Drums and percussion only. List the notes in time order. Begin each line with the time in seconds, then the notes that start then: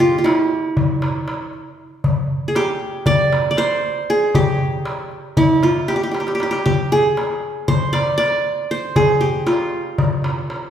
0.26 darbuka tek
0.77 darbuka dum
1.02 darbuka tek
1.28 darbuka tek
1.53 darbuka ka
2.04 darbuka dum
2.55 darbuka tek
3.06 darbuka dum
3.33 darbuka tek
3.57 darbuka tek
3.84 darbuka ka
4.35 darbuka dum
4.73 darbuka ka
4.85 darbuka tek
5.11 darbuka ka
5.37 darbuka dum
5.63 darbuka tek
5.89 darbuka tek
6.15 darbuka tek
6.27 darbuka ka
6.40 darbuka tek
6.52 darbuka ka
6.66 darbuka dum
7.17 darbuka tek
7.68 darbuka dum
7.94 darbuka tek
8.19 darbuka tek
8.45 darbuka ka
8.96 darbuka dum
9.47 darbuka tek
9.98 darbuka dum
10.24 darbuka tek
10.50 darbuka tek